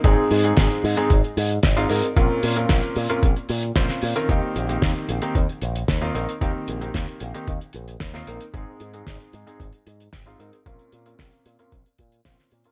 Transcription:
<<
  \new Staff \with { instrumentName = "Grand piano" } { \time 4/4 \key ees \mixolydian \tempo 4 = 113 <aes, aes c' ees' aes'>8. <aes, aes c' ees' aes'>4 <aes, aes c' ees' aes'>16 r4 r16 <aes, aes c' ees' f'>16 <aes c' ees' bes'>16 r16 | <bes, c' des' f' bes'>8. <bes, c' des' f' bes'>4 <bes, c' des' f' bes'>16 r4 <bes, c' des' f' c''>8. <ees c' des' f' bes'>16 | <ees bes c' ees' g'>8. <ees bes c' ees' g'>4 <ees bes c' ees' g'>16 r4 r16 <ees bes c' ees' f'>16 <ees bes c' ees' bes'>16 r16 | <ees bes c' ees' g'>8. <ees bes c' ees' g'>4 <ees bes c' ees' g'>16 r4 r16 <ees bes c' ees' f'>16 <bes c' ees' bes'>16 r16 |
<aes, aes c' ees' aes'>8. <aes, aes c' ees' aes'>4 <aes, aes c' ees' aes'>16 r4 r16 <aes, aes c' ees' f'>16 <aes c' ees' bes'>16 r16 | <bes, c' des' f' bes'>8. <bes, c' des' f' bes'>4 <bes, c' des' f' bes'>16 r4 <bes, c' des' f' c''>8. <bes, c' des' f' bes'>16 | }
  \new Staff \with { instrumentName = "Picked electric bass" } { \clef bass \time 4/4 \key ees \mixolydian aes,,8 aes,8 aes,,8 aes,8 aes,,8 aes,8 aes,,8 aes,8 | bes,,8 bes,8 bes,,8 bes,8 bes,,8 bes,8 bes,,8 bes,8 | ees,8 bes,,8 ees,8 bes,,8 ees,8 bes,,8 ees,8 bes,,8 | ees,8 bes,,8 ees,8 bes,,8 ees,8 bes,,8 ees,8 bes,,8 |
aes,,8 aes,8 aes,,8 aes,8 aes,,8 aes,8 aes,,8 aes,8 | bes,,8 bes,8 bes,,8 bes,8 bes,,8 bes,8 bes,,8 bes,8 | }
  \new DrumStaff \with { instrumentName = "Drums" } \drummode { \time 4/4 <hh bd>8 hho16 hh16 <hh bd sn>16 hh16 hho16 hh16 <hh bd>16 hh16 hho16 hh16 <hh bd sn>16 hh16 hho16 hh16 | <hh bd>8 hho16 hh16 <hh bd sn>16 hh16 hho16 hh16 <hh bd>16 hh16 hho16 hh16 <hh bd sn>16 <hh sn>16 hho16 hh16 | <hh bd>8 hh16 hh16 <hh bd sn>16 hh16 hh16 hh16 <hh bd>16 hh16 hh16 hh16 <hh bd sn>16 hh16 hh16 hh16 | <hh bd>8 hh16 hh16 <hh bd sn>16 hh16 hh16 hh16 <hh bd>16 hh16 hh16 hh16 <hh bd sn>16 <hh sn>16 hh16 hh16 |
<hh bd>8 hh16 hh16 <hh bd sn>16 hh16 hh16 hh16 <hh bd>16 hh16 hh16 hh16 <hh bd sn>16 hh16 hh16 hh16 | <hh bd>16 hh16 hh16 hh16 <hh bd sn>16 hh16 hh16 hh16 <hh bd>16 hh16 <hh bd>16 hh16 <hh bd sn>16 <hh sn>16 hh16 hh16 | }
>>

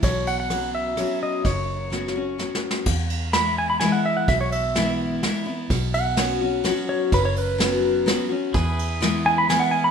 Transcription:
<<
  \new Staff \with { instrumentName = "Pedal steel guitar" } { \time 3/4 \key e \major \tempo 4 = 127 cis''8 fis''16 fis''8. e''4 dis''8 | cis''2~ cis''8 r8 | r4 b''8 gis''16 b''16 gis''16 fis''16 e''16 fis''16 | e''16 cis''16 e''4 r4. |
r8 fis''2 cis''8 | b'16 cis''16 b'2 r8 | r4. gis''16 b''16 gis''16 fis''16 gis''16 b''16 | }
  \new Staff \with { instrumentName = "Pedal steel guitar" } { \time 3/4 \key e \major r2. | r2. | r2. | r2. |
r2. | r2. | <e' gis' b'>2. | }
  \new Staff \with { instrumentName = "Steel-string acoustic guitar" } { \time 3/4 \key e \major << { r4 <fis b cis' fis'>4 <fis b cis' fis'>4 | r4 <fis b cis' fis'>8 <cis' fis'>8 <fis b cis' fis'>4 | r4 <e gis b e'>4 <e gis b e'>4 | r4 <e gis b e'>4 <e gis b e'>8 <b e'>8 |
r4 <fis b cis' fis'>8 <cis' fis'>8 <fis b cis' fis'>4 | r4 <fis b cis' fis'>4 <fis b cis' fis'>8 <cis' fis'>8 | r4 <e gis b e'>4 <e gis b e'>4 | } \\ { b,2 r4 | fis,2 r4 | e,2 r4 | b,2 r4 |
b,2 r4 | fis,2 r4 | e,2 r4 | } >> }
  \new Staff \with { instrumentName = "Fingered electric bass" } { \clef bass \time 3/4 \key e \major b,,2. | fis,,2. | e,2. | b,,2. |
b,,2. | fis,,2. | e,2. | }
  \new DrumStaff \with { instrumentName = "Drums" } \drummode { \time 3/4 <bd cymr>8 cymr8 <cymr ss>4 <cymr ss>4 | <bd cymr>4 \tuplet 3/2 { sn8 sn8 r8 sn8 sn8 sn8 } | <cymc bd>8 cymr8 <cymr sn>4 <cymr sn>4 | <bd cymr>8 cymr8 <cymr sn>4 <cymr sn>4 |
<bd cymr>8 cymr8 <cymr sn>4 <cymr sn>4 | <bd cymr>8 cymr8 <cymr sn>4 <cymr sn>4 | <bd cymr>8 cymr8 <cymr sn>4 <cymr sn>4 | }
>>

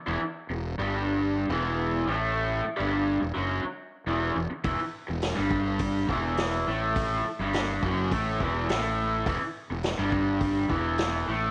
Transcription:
<<
  \new Staff \with { instrumentName = "Overdriven electric guitar" } { \clef bass \time 4/4 \key e \minor \tempo 4 = 104 <e, e>16 r8 e,8 <g, g>4~ <g, g>16 <e, e>4 <a, a>8~ | <a, a>8 r16 <g, g>8. e,16 <fis, fis>8 r8. <e, e>8 e,16 r16 | <e, e>16 r8 e,8 <g, g>4~ <g, g>16 <e, e>4 <a, a>8~ | <a, a>8 r16 <g, g>8. <fis, fis>8 <a, a>8 <e, e>8 <a, a>4 |
<e, e>16 r8 e,8 <g, g>4~ <g, g>16 <e, e>4 <a, a>8 | }
  \new Staff \with { instrumentName = "Fingered electric bass" } { \clef bass \time 4/4 \key e \minor e,,16 r8 e,,8 g,,4~ g,,16 e,,4 a,,8~ | a,,8 r16 g,,8. e,,16 fis,,8 r8. e,,8 e,,16 r16 | e,,16 r8 e,,8 g,,4~ g,,16 e,,4 a,,8~ | a,,8 r16 g,,8. fis,,8 a,,8 e,,8 a,,4 |
e,,16 r8 e,,8 g,,4~ g,,16 e,,4 a,,8 | }
  \new DrumStaff \with { instrumentName = "Drums" } \drummode { \time 4/4 r4 r4 r4 r4 | r4 r4 r4 r4 | <hho bd>4 <hho sn>8 bd8 <hho bd>8 bd8 <hho sn>4 | <hho bd>4 <hho sn>8 bd8 <hho bd>8 bd8 <hho sn>4 |
<hho bd>4 <hho sn>8 bd8 <hho bd>8 bd8 <hho sn>4 | }
>>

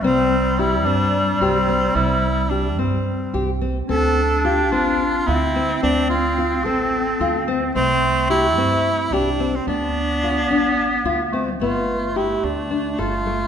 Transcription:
<<
  \new Staff \with { instrumentName = "Tenor saxophone" } { \time 7/8 \key d \dorian \tempo 4 = 109 c'4 e'8 d'4 c'4 | e'4 d'8 c'4. r8 | a'4 g'8 f'4 e'4 | d'8 f'4 a'4. r8 |
c'4 e'4. d'8. c'16 | d'2~ d'8 r4 | f'4 e'8 d'4 f'4 | }
  \new Staff \with { instrumentName = "Nylon-string guitar" } { \time 7/8 \key d \dorian c'4 g'8 c'4 g'8 c'8 | c'4 g'8 c'4 g'8 c'8 | c'4 f'8 c'4 f'8 c'8 | c'4 f'8 c'4 f'8 c'8 |
c'4 g'8 c'4 g'8 c'8 | d'4 f'8 d'4 f'8 c'8 | b4 g'4 d'8 a'8 a8 | }
  \new Staff \with { instrumentName = "Clarinet" } { \time 7/8 \key d \dorian g2.~ g8~ | g2. r8 | d'2~ d'8 c'4~ | c'2.~ c'8 |
a2. r8 | b2. a8 | a2.~ a8 | }
  \new Staff \with { instrumentName = "Upright bass" } { \clef bass \time 7/8 \key d \dorian c,4. g,4 c,4 | c,4. g,4 c,4 | d,4. a,,4 d,4 | d,4. a,,4 d,4 |
c,4. g,4 c,4 | d,4. a,,4 d,4 | g,,4. d,4 g,,4 | }
>>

